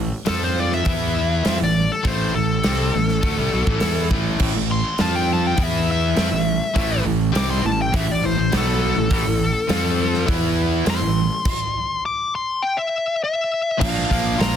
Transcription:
Already playing: A1
0.25 F2 F3 C4 F4 A4, snare, open hi-hat
0.44 C5
0.60 D5
0.72 E5, snare
0.85 E2 E3 B3 E4, kick, open hi-hat
1.44 F2 F3 C4, snare, open hi-hat
1.59 A1 A2 E3
1.64 D5
1.92 A4
2.03 A1 A2 E3 A3 C5, kick, open hi-hat
2.35 A1 A2 E3 A4
2.64 C2 C3 G3 C4, snare, open hi-hat
2.94 A1 A2 E3
3.09 snare
3.23 D2 D3 A3, kick, open hi-hat
3.37 C2 C3 G3
3.53 B1 B2 F#3
3.66 A1 A2 E3, kick
3.80 E2 E3 B3 E4, snare, open hi-hat
4.11 A1 A2 E3 A3, kick
4.39 A1 A2 E3, kick, crash
4.56 A1 A2 E3
4.71 C6
4.98 F2 F3 C4 F4 A5, snare, open hi-hat
5.16 G5
5.33 A5
5.47 G5
5.57 E2 E3 B3 E4, kick, open hi-hat
5.63 E5
5.91 E5
6.16 F2 F3 C4, snare, open hi-hat
6.31 A1 A2 E3
6.74 A1 A2 E3 A3, kick, open hi-hat
7.04 A1 A2 E3
7.32 C2 C3 G3 C4, open hi-hat
7.36 D6, snare
7.51 C6
7.63 A1 A2 E3 A5
7.82 G5
7.94 A1 A2 E3 E5, kick, open hi-hat
8.07 A1 A2 E3
8.11 D5
8.23 A1 A2 E3 C5
8.36 A1 A2 E3
8.51 B1 B2 F#3 B3, snare, open hi-hat
8.57 A4
8.96 A1 A2 E3
9.11 A1 A2 E3, kick, open hi-hat
9.26 A1 A2 E3
9.68 F2 F3 C4 F4, snare, open hi-hat
10.14 snare
10.26 E2 E3 B3 E4, kick, open hi-hat
10.85 F2 F3 C4, snare, open hi-hat
10.90 C6
11.01 A1 A2 E3
11.45 kick, crash
12.06 D6
12.35 C6
12.62 G5
12.77 E5
13.24 E5
13.78 A#1 A#2 F3 A#3 D4 F5, kick, crash
13.98 snare
14.09 A#1 A#2 F3 A#3, kick, open hi-hat
14.38 A#1 A#2 F3 A#3 F4 A#5, snare, open hi-hat

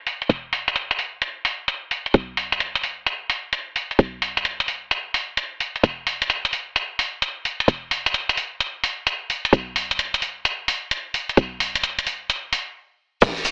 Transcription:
Already playing: E1
0.07 open hi-hat
0.22 closed hi-hat
0.29 E1, closed hi-hat
0.53 open hi-hat
0.68 closed hi-hat
0.76 closed hi-hat
0.91 closed hi-hat
0.99 open hi-hat
1.22 closed hi-hat
1.45 open hi-hat
1.68 closed hi-hat
1.91 open hi-hat
2.06 closed hi-hat
2.14 B1, closed hi-hat
2.37 open hi-hat
2.52 closed hi-hat
2.60 closed hi-hat
2.75 closed hi-hat
2.83 open hi-hat
3.06 closed hi-hat
3.30 open hi-hat
3.53 closed hi-hat
3.76 open hi-hat
3.91 closed hi-hat
3.99 B1, closed hi-hat
4.22 open hi-hat
4.37 closed hi-hat
4.45 closed hi-hat
4.60 closed hi-hat
4.68 open hi-hat
4.91 closed hi-hat
5.14 open hi-hat
5.37 closed hi-hat
5.60 open hi-hat
5.76 closed hi-hat
5.83 E1, closed hi-hat
6.07 open hi-hat
6.22 closed hi-hat
6.30 closed hi-hat
6.45 closed hi-hat
6.53 open hi-hat
6.76 closed hi-hat
6.99 open hi-hat
7.22 closed hi-hat
7.45 open hi-hat
7.60 closed hi-hat
7.68 E1, closed hi-hat
7.91 open hi-hat
8.06 closed hi-hat
8.14 closed hi-hat
8.29 closed hi-hat
8.37 open hi-hat
8.60 closed hi-hat
8.84 open hi-hat
9.07 closed hi-hat
9.30 open hi-hat
9.45 closed hi-hat
9.53 B1, closed hi-hat
9.76 open hi-hat
9.91 closed hi-hat
9.99 closed hi-hat
10.14 closed hi-hat
10.22 open hi-hat
10.45 closed hi-hat
10.68 open hi-hat
10.91 closed hi-hat
11.14 open hi-hat
11.29 closed hi-hat
11.37 B1, closed hi-hat
11.60 open hi-hat
11.75 closed hi-hat
11.83 closed hi-hat
11.99 closed hi-hat
12.07 open hi-hat
12.30 closed hi-hat
12.53 open hi-hat
13.22 E1, kick, closed hi-hat, crash, cabasa
13.37 cabasa
13.45 open hi-hat, cabasa

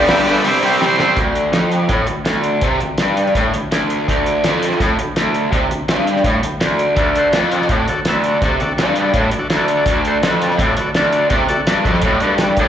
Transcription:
0.08 G2 D3 G3 G4 B4 E5, snare, open hi-hat
0.27 G2 D3 G3 G4 B4, open hi-hat
0.32 E5
0.44 C3 G3 C4 G4, open hi-hat
0.49 C5 E5
0.61 C3 G3 C4, open hi-hat
0.65 G4 C5 E5
0.80 C3 G3 C4, snare
0.86 G4 C5 E5 C6
0.98 C3 G3 C4, snare
1.02 G4 C5 E5
1.16 D2, kick, closed hi-hat
1.35 closed hi-hat
1.53 F2, snare, closed hi-hat
1.72 closed hi-hat
1.89 A2, kick, closed hi-hat
2.07 D2, closed hi-hat
2.25 D2, snare, closed hi-hat
2.43 closed hi-hat
2.61 C3, kick, closed hi-hat
2.80 D2, closed hi-hat
2.98 G2, snare, closed hi-hat
3.17 closed hi-hat
3.26 snare
3.35 A2, kick, closed hi-hat
3.54 D2, closed hi-hat
3.72 D2, snare, closed hi-hat
3.90 closed hi-hat
4.08 D2, kick, closed hi-hat
4.26 closed hi-hat
4.44 F2, snare, closed hi-hat
4.63 closed hi-hat
4.72 snare
4.80 A2, kick, closed hi-hat
4.99 D2, closed hi-hat
5.16 D2, snare, closed hi-hat
5.34 closed hi-hat
5.52 C3, kick, closed hi-hat
5.70 D2, closed hi-hat
5.88 G2, snare, closed hi-hat
6.07 closed hi-hat
6.16 snare
6.24 A2, kick, closed hi-hat
6.43 D2, closed hi-hat
6.61 D2, snare, closed hi-hat
6.79 closed hi-hat
6.96 D2 F#4 A4 D5, kick, closed hi-hat
7.15 F#4 A4 C5, closed hi-hat
7.33 F2 F#4 A4 D5, snare, closed hi-hat
7.51 F#4 A4 D5, closed hi-hat
7.62 snare
7.69 A2 F#4, kick, closed hi-hat
7.75 A4 D5
7.88 D2 F#4 A4 D5, closed hi-hat
8.05 D2 F#4 A4, snare, closed hi-hat
8.09 E5
8.24 closed hi-hat
8.29 F#4 A4 D5
8.42 C3 F#4 D5, kick, closed hi-hat
8.47 A4
8.60 D2 F#4 A4 D5, closed hi-hat
8.78 G2 F#4 A4 D5, snare, closed hi-hat
8.95 closed hi-hat
9.00 F#4 A4 D5
9.14 A2, kick, closed hi-hat
9.19 F#4 A4 E5
9.31 D2, closed hi-hat
9.39 F#4 A4 D5
9.50 D2, snare, closed hi-hat
9.56 F#4 A4 D5
9.68 closed hi-hat
9.76 F#4 A4 D5
9.86 D2, kick, closed hi-hat
9.92 F#4 A4 D5
10.05 F#4 A4 C5, closed hi-hat
10.23 F2, snare, closed hi-hat
10.27 F#4 A4 B4
10.42 F#4 A4, closed hi-hat
10.46 D5
10.51 snare
10.59 A2, kick, closed hi-hat
10.64 F#4 A4 D5
10.77 D2 F#4 A4, closed hi-hat
10.81 D5
10.94 D2 F#4 A4 D5, snare, closed hi-hat
11.12 F#4 A4 D5, closed hi-hat
11.30 C3 F#4 A4 D5, kick, closed hi-hat
11.47 D2 F#4 A4 D5, closed hi-hat
11.67 G2 F#4 A4 D5, snare, closed hi-hat
11.84 F2 F#4 A4 D5, kick, closed hi-hat
11.94 snare
12.02 A2, kick, closed hi-hat
12.06 F#4 A4 D5
12.20 G2 F#4 A4 D5, closed hi-hat
12.38 F#4, snare, closed hi-hat
12.44 A4 D5
12.57 A2 F#4 A4, kick, closed hi-hat
12.62 D5

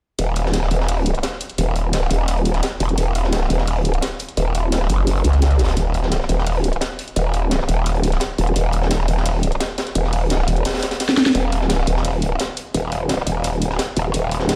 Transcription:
0.19 D#1, closed hi-hat
0.36 closed hi-hat
0.46 snare
0.53 snare, closed hi-hat
0.63 snare
0.70 D#1, closed hi-hat
0.80 snare
0.88 closed hi-hat, open hi-hat
1.06 closed hi-hat
1.15 closed hi-hat
1.23 snare, closed hi-hat
1.33 snare
1.40 closed hi-hat
1.50 closed hi-hat
1.58 D#1, closed hi-hat
1.76 closed hi-hat
1.93 snare, closed hi-hat
2.02 snare
2.11 D#1, closed hi-hat
2.28 closed hi-hat
2.37 closed hi-hat
2.45 closed hi-hat
2.54 snare, closed hi-hat
2.63 snare, closed hi-hat
2.80 D#1, closed hi-hat
2.89 closed hi-hat
2.98 D#1, closed hi-hat
3.15 closed hi-hat
3.24 snare
3.32 snare, closed hi-hat
3.41 snare
3.50 D#1, closed hi-hat
3.58 snare
3.67 closed hi-hat, open hi-hat
3.85 closed hi-hat
3.94 closed hi-hat
4.02 snare, closed hi-hat
4.12 snare
4.19 closed hi-hat
4.29 closed hi-hat
4.37 D#1, closed hi-hat
4.55 closed hi-hat
4.72 snare, closed hi-hat
4.81 snare
4.89 F#1, closed hi-hat
5.07 closed hi-hat
5.24 C#2, closed hi-hat
5.33 snare, closed hi-hat
5.42 snare, closed hi-hat
5.51 closed hi-hat
5.59 snare, closed hi-hat
5.64 snare, closed hi-hat
5.68 snare, closed hi-hat
5.76 D#1, closed hi-hat
5.94 closed hi-hat
6.03 snare
6.11 snare, closed hi-hat
6.21 snare
6.29 D#1, closed hi-hat
6.38 snare
6.46 closed hi-hat, open hi-hat
6.64 closed hi-hat
6.73 closed hi-hat
6.81 snare, closed hi-hat
6.90 snare
6.99 closed hi-hat
7.08 closed hi-hat
7.16 D#1, closed hi-hat
7.33 closed hi-hat
7.51 snare, closed hi-hat
7.59 snare
7.69 D#1, closed hi-hat
7.86 closed hi-hat
7.95 closed hi-hat
8.03 closed hi-hat
8.12 snare, closed hi-hat
8.20 snare, closed hi-hat
8.38 D#1, closed hi-hat
8.47 closed hi-hat
8.56 D#1, closed hi-hat
8.72 closed hi-hat
8.82 snare
8.91 snare, closed hi-hat
9.00 snare
9.08 D#1, closed hi-hat
9.17 snare
9.26 closed hi-hat, open hi-hat
9.43 closed hi-hat
9.52 closed hi-hat
9.60 snare, closed hi-hat
9.69 snare
9.78 snare, closed hi-hat
9.87 snare, closed hi-hat
9.95 D#1, closed hi-hat
10.04 snare
10.13 closed hi-hat, open hi-hat
10.30 snare, closed hi-hat
10.39 snare
10.48 D#1, closed hi-hat
10.56 closed hi-hat
10.65 snare, closed hi-hat
10.68 snare, closed hi-hat
10.74 snare, closed hi-hat
10.78 snare, closed hi-hat
10.82 snare, closed hi-hat
10.91 snare, closed hi-hat
11.00 snare, closed hi-hat
11.09 snare, closed hi-hat
11.17 snare, closed hi-hat
11.26 snare, closed hi-hat
11.35 D#1, closed hi-hat
11.52 closed hi-hat
11.61 snare
11.69 snare, closed hi-hat
11.79 snare
11.87 D#1, closed hi-hat
11.96 snare
12.04 closed hi-hat, open hi-hat
12.22 closed hi-hat
12.39 snare, closed hi-hat
12.48 snare
12.57 closed hi-hat
12.74 D#1, closed hi-hat
12.92 closed hi-hat
13.09 snare, closed hi-hat
13.18 snare
13.27 D#1, closed hi-hat
13.44 closed hi-hat
13.53 closed hi-hat
13.62 closed hi-hat
13.70 snare
13.79 snare, closed hi-hat
13.97 D#1, closed hi-hat
14.14 D#1, closed hi-hat
14.31 closed hi-hat
14.39 snare
14.49 snare, closed hi-hat

